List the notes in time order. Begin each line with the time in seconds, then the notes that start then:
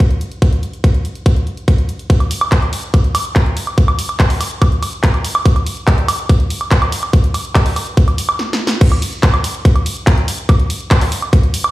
0.00 kick, closed hi-hat
0.11 closed hi-hat
0.21 closed hi-hat
0.32 closed hi-hat
0.42 kick, closed hi-hat
0.53 closed hi-hat
0.63 closed hi-hat
0.73 closed hi-hat
0.84 kick, closed hi-hat
0.94 closed hi-hat
1.05 closed hi-hat
1.15 closed hi-hat
1.26 kick, closed hi-hat
1.36 closed hi-hat
1.47 closed hi-hat
1.57 closed hi-hat
1.68 kick, closed hi-hat
1.78 closed hi-hat
1.89 closed hi-hat
1.99 closed hi-hat
2.10 kick, closed hi-hat
2.20 closed hi-hat, high woodblock
2.31 open hi-hat
2.41 closed hi-hat, high woodblock
2.52 kick, clap, closed hi-hat
2.62 closed hi-hat, high woodblock
2.73 open hi-hat
2.83 closed hi-hat
2.94 kick, closed hi-hat, high woodblock
3.04 closed hi-hat
3.15 open hi-hat, high woodblock
3.25 closed hi-hat
3.36 kick, clap, closed hi-hat, high woodblock
3.46 closed hi-hat
3.57 open hi-hat
3.67 closed hi-hat, high woodblock
3.78 kick, closed hi-hat
3.88 closed hi-hat, high woodblock
3.99 open hi-hat
4.09 closed hi-hat, high woodblock
4.20 kick, clap, closed hi-hat
4.30 open hi-hat
4.41 open hi-hat, high woodblock
4.51 closed hi-hat
4.62 kick, closed hi-hat, high woodblock
4.72 closed hi-hat
4.83 open hi-hat, high woodblock
4.93 closed hi-hat
5.04 kick, clap, closed hi-hat
5.14 closed hi-hat, high woodblock
5.25 open hi-hat
5.35 closed hi-hat, high woodblock
5.46 kick, closed hi-hat
5.56 closed hi-hat, high woodblock
5.66 open hi-hat
5.77 closed hi-hat
5.87 kick, clap, closed hi-hat, high woodblock
5.98 closed hi-hat
6.08 open hi-hat, high woodblock
6.19 closed hi-hat
6.29 kick, closed hi-hat, high woodblock
6.40 closed hi-hat
6.50 open hi-hat
6.61 closed hi-hat, high woodblock
6.71 kick, clap, closed hi-hat
6.82 closed hi-hat, high woodblock
6.92 open hi-hat
7.03 closed hi-hat, high woodblock
7.13 kick, closed hi-hat
7.24 closed hi-hat
7.34 open hi-hat, high woodblock
7.45 closed hi-hat
7.55 kick, clap, closed hi-hat, high woodblock
7.66 open hi-hat
7.76 open hi-hat, high woodblock
7.87 closed hi-hat
7.97 kick, closed hi-hat
8.08 closed hi-hat, high woodblock
8.18 open hi-hat
8.29 closed hi-hat, high woodblock
8.39 snare
8.53 snare
8.67 snare
8.81 kick, closed hi-hat, crash
8.92 closed hi-hat, high woodblock
9.02 open hi-hat
9.13 closed hi-hat
9.23 kick, clap, closed hi-hat
9.34 closed hi-hat, high woodblock
9.44 open hi-hat
9.55 closed hi-hat
9.65 kick, closed hi-hat
9.76 closed hi-hat, high woodblock
9.86 open hi-hat
9.97 closed hi-hat
10.07 kick, clap, closed hi-hat, high woodblock
10.18 closed hi-hat
10.28 open hi-hat
10.39 closed hi-hat
10.49 kick, closed hi-hat, high woodblock
10.60 closed hi-hat
10.70 open hi-hat
10.80 closed hi-hat
10.91 kick, clap, closed hi-hat, high woodblock
11.01 clap, open hi-hat
11.12 open hi-hat
11.22 closed hi-hat, high woodblock
11.33 kick, closed hi-hat
11.43 closed hi-hat
11.54 open hi-hat
11.64 closed hi-hat, high woodblock